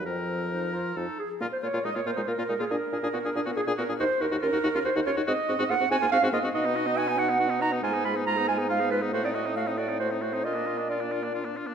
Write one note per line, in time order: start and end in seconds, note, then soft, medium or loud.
0.05 0.79 F2 medium
0.05 0.95 F3 soft
0.05 0.47 C4 soft
0.05 0.98 A#4 soft
0.05 0.87 C5 medium
0.52 0.75 D#4 medium
0.74 0.96 F4 soft
0.96 1.07 F2 soft
0.96 1.06 F3 soft
0.96 1.19 D#4 medium
0.96 1.19 A4 soft
1.19 1.43 G#4 soft
1.19 1.29 G#4 medium
1.40 1.46 A#2 medium
1.40 1.46 A#3 medium
1.40 1.46 F4 medium
1.40 1.46 A#4 medium
1.40 1.51 A#4 medium
1.51 1.64 C5 medium
1.51 1.58 C5 medium
1.62 1.68 A#2 soft
1.62 1.68 A#3 soft
1.62 1.68 F4 soft
1.62 1.85 C#5 medium
1.62 1.86 C#5 medium
1.73 1.79 A#2 medium
1.73 1.79 A#3 medium
1.73 1.78 F4 medium
1.84 1.90 A#2 soft
1.84 1.90 G#3 soft
1.84 1.90 D#4 soft
1.84 1.96 D#5 medium
1.94 2.01 A#2 soft
1.94 2.01 A#3 soft
1.94 2.00 F4 soft
1.94 2.05 C#5 medium
1.94 2.08 C#5 medium
2.05 2.11 A#2 medium
2.05 2.11 A#3 medium
2.05 2.11 F4 medium
2.05 2.11 C5 medium
2.05 2.30 C5 medium
2.16 2.22 A#2 soft
2.16 2.22 G#3 medium
2.16 2.21 D#4 soft
2.27 2.33 A#2 soft
2.27 2.33 A#3 medium
2.27 2.32 F4 soft
2.27 2.58 A#4 medium
2.27 2.63 A#4 medium
2.38 2.43 A#2 medium
2.38 2.43 A#3 medium
2.38 2.43 F4 medium
2.49 2.54 A#2 soft
2.49 2.54 G#3 medium
2.49 2.54 D#4 medium
2.59 2.65 A#2 medium
2.59 2.65 A#3 medium
2.59 2.65 F4 medium
2.59 2.64 G#4 medium
2.59 2.73 G#4 medium
2.70 2.76 A#2 medium
2.70 2.76 D4 medium
2.70 2.75 G#4 medium
2.70 3.57 A#4 medium
2.70 3.56 A#4 medium
2.92 2.97 A#2 soft
2.92 2.98 D4 medium
2.92 2.98 G#4 soft
3.03 3.08 A#2 medium
3.03 3.08 D4 medium
3.03 3.08 G#4 medium
3.13 3.18 A#2 soft
3.13 3.19 B3 soft
3.13 3.18 F#4 soft
3.24 3.29 A#2 soft
3.24 3.30 D4 medium
3.24 3.30 G#4 medium
3.35 3.40 A#2 medium
3.35 3.41 D4 medium
3.35 3.40 G#4 medium
3.46 3.51 A#2 soft
3.46 3.51 B3 medium
3.46 3.51 F#4 medium
3.56 3.62 A#2 soft
3.56 3.62 D4 soft
3.56 3.78 G#4 medium
3.56 3.61 G#4 medium
3.56 3.67 G#4 medium
3.67 3.72 A#2 medium
3.67 3.72 D4 medium
3.67 3.72 G#4 medium
3.78 3.83 A#2 soft
3.78 3.84 B3 medium
3.78 3.83 F#4 medium
3.78 4.02 A#4 medium
3.78 3.88 A#4 medium
3.89 3.94 A#2 medium
3.89 3.94 D4 medium
3.89 3.94 G#4 medium
4.00 4.05 D#2 medium
4.00 4.05 D#4 medium
4.00 4.05 F#4 medium
4.00 4.23 C5 medium
4.00 4.23 C5 loud
4.21 4.26 D#2 medium
4.21 4.25 D#4 medium
4.21 4.26 F#4 soft
4.21 4.42 A#4 medium
4.31 4.37 D#2 medium
4.31 4.36 D#4 medium
4.31 4.36 F#4 medium
4.42 4.48 D#2 medium
4.42 4.47 C#4 medium
4.42 4.47 F4 soft
4.42 4.85 A#4 medium
4.42 4.87 A#4 medium
4.53 4.58 D#2 medium
4.53 4.58 D#4 medium
4.53 4.58 F#4 medium
4.63 4.69 D#2 medium
4.63 4.68 D#4 medium
4.63 4.68 F#4 medium
4.74 4.79 D#2 medium
4.74 4.80 C#4 medium
4.74 4.80 F4 medium
4.85 4.90 D#2 medium
4.85 4.90 D#4 medium
4.85 4.90 F#4 medium
4.85 5.07 C5 medium
4.85 4.95 C5 medium
4.96 5.01 D#2 medium
4.96 5.00 D#4 medium
4.96 5.00 F#4 medium
5.06 5.11 D#2 medium
5.06 5.11 C#4 medium
5.06 5.11 F4 medium
5.06 5.27 C#5 medium
5.06 5.16 C#5 medium
5.17 5.22 D#2 medium
5.17 5.22 D#4 medium
5.17 5.21 F#4 medium
5.27 5.33 G#2 medium
5.27 5.33 C4 medium
5.27 5.32 F#4 medium
5.27 5.69 D#5 medium
5.27 5.71 D#5 medium
5.49 5.54 G#2 medium
5.49 5.54 C4 medium
5.49 5.54 F#4 medium
5.59 5.64 G#2 medium
5.59 5.64 C4 medium
5.59 5.64 F#4 medium
5.69 5.75 G#2 medium
5.69 5.75 A#3 medium
5.69 5.75 F4 soft
5.69 5.92 F#5 medium
5.69 5.91 F#5 loud
5.80 5.85 G#2 medium
5.80 5.85 C4 medium
5.80 5.85 F#4 medium
5.91 5.96 G#2 medium
5.91 5.96 C4 medium
5.91 5.96 F#4 medium
5.91 6.14 G#5 medium
5.91 6.11 G#5 loud
6.02 6.07 G#2 medium
6.02 6.07 A#3 medium
6.02 6.06 F4 medium
6.12 6.17 G#2 medium
6.12 6.17 C4 medium
6.12 6.17 F#4 medium
6.12 6.35 F5 medium
6.12 6.22 F5 loud
6.22 6.28 G#2 medium
6.22 6.27 C4 medium
6.22 6.28 F#4 medium
6.32 6.38 G#2 medium
6.32 6.37 A#3 medium
6.32 6.38 F4 medium
6.32 6.43 D#5 medium
6.32 6.54 D#5 medium
6.43 6.49 G#2 medium
6.43 6.48 C4 medium
6.43 6.49 F#4 medium
6.54 7.79 B2 medium
6.54 6.66 D#4 medium
6.54 6.67 F#4 medium
6.54 6.99 D#5 medium
6.54 6.99 D#5 loud
6.65 6.77 B3 medium
6.65 6.77 D#4 medium
6.75 6.88 D#4 medium
6.75 6.88 F#4 medium
6.87 6.96 B3 medium
6.87 6.97 D#4 medium
6.97 7.09 D#4 medium
6.97 7.09 F#4 medium
6.97 7.20 G#5 loud
6.97 7.21 G#5 loud
7.08 7.19 B3 medium
7.08 7.20 D#4 medium
7.18 7.30 D#4 medium
7.18 7.31 F#4 medium
7.18 7.61 F#5 medium
7.18 7.43 F#5 medium
7.29 7.39 B3 medium
7.29 7.39 D#4 medium
7.39 7.51 D#4 medium
7.39 7.51 F#4 medium
7.50 7.62 B3 medium
7.50 7.63 D#4 medium
7.61 7.73 D#4 medium
7.61 7.73 F#4 medium
7.61 7.71 A#5 loud
7.61 7.68 A#5 medium
7.72 7.81 B3 medium
7.72 7.83 D#4 medium
7.82 9.15 G#2 medium
7.82 7.94 G#3 medium
7.82 7.96 F4 medium
7.82 8.04 G#5 medium
7.93 8.05 B3 medium
7.93 8.07 D#4 medium
8.04 8.16 G#3 medium
8.04 8.18 F4 medium
8.04 8.25 B5 medium
8.04 8.15 B5 medium
8.15 8.26 B3 medium
8.15 8.26 D#4 medium
8.26 8.38 G#3 medium
8.26 8.39 F4 medium
8.26 8.32 A#5 medium
8.26 8.48 A#5 loud
8.37 8.50 B3 medium
8.37 8.50 D#4 medium
8.48 8.60 G#3 medium
8.48 8.60 F4 medium
8.48 8.58 G#5 medium
8.48 8.70 G#5 medium
8.59 8.69 B3 medium
8.59 8.69 D#4 medium
8.69 8.82 G#3 medium
8.69 8.82 F4 medium
8.69 8.91 F5 medium
8.80 8.93 B3 soft
8.80 8.93 D#4 medium
8.91 9.04 G#3 medium
8.91 9.04 F4 medium
8.91 9.01 B4 medium
8.91 8.98 B4 medium
9.02 9.12 B3 soft
9.02 9.13 D#4 medium
9.13 10.46 A2 medium
9.13 9.25 A3 medium
9.13 9.26 F#4 medium
9.13 9.18 C5 medium
9.13 9.24 C5 medium
9.23 9.35 C4 medium
9.23 9.36 D#4 soft
9.23 9.34 D5 medium
9.23 9.29 D5 medium
9.34 9.46 A3 soft
9.34 9.47 F#4 soft
9.34 9.40 D#5 medium
9.34 9.58 D#5 medium
9.45 9.54 C4 soft
9.45 9.56 D#4 soft
9.55 9.68 A3 soft
9.55 9.68 F#4 soft
9.55 9.61 F5 medium
9.55 9.69 F5 medium
9.66 9.79 C4 soft
9.66 9.79 D#4 soft
9.66 9.72 D#5 medium
9.66 9.79 D#5 medium
9.78 9.90 A3 soft
9.78 9.90 F#4 medium
9.78 9.84 D5 medium
9.78 9.99 D5 medium
9.88 9.99 C4 soft
9.88 9.99 D#4 soft
9.99 10.12 A3 soft
9.99 10.12 F#4 soft
9.99 10.10 C5 medium
9.99 10.21 C5 medium
10.11 10.24 C4 soft
10.11 10.23 D#4 soft
10.21 10.34 A3 soft
10.21 10.34 F#4 soft
10.21 10.46 C5 medium
10.33 10.43 C4 soft
10.33 10.44 D#4 soft
10.44 11.57 A#2 medium
10.44 10.57 D4 soft
10.44 10.57 F4 soft
10.44 10.91 D#5 medium
10.55 10.68 A#3 soft
10.55 10.68 D4 soft
10.66 10.78 D4 soft
10.66 10.79 F4 soft
10.77 10.88 A#3 soft
10.77 10.89 D4 soft
10.89 11.01 D4 soft
10.89 11.02 F4 soft
10.89 11.57 D5 medium
10.89 11.57 D5 soft
10.99 11.12 A#3 soft
10.99 11.13 D4 soft
11.11 11.24 D4 soft
11.11 11.25 F4 soft
11.22 11.33 A#3 soft
11.22 11.34 D4 soft
11.34 11.47 D4 soft
11.34 11.47 F4 soft
11.45 11.58 A#3 soft
11.45 11.59 D4 soft
11.57 11.69 D4 soft
11.57 11.69 F4 soft
11.67 11.74 A#3 soft
11.67 11.74 D4 soft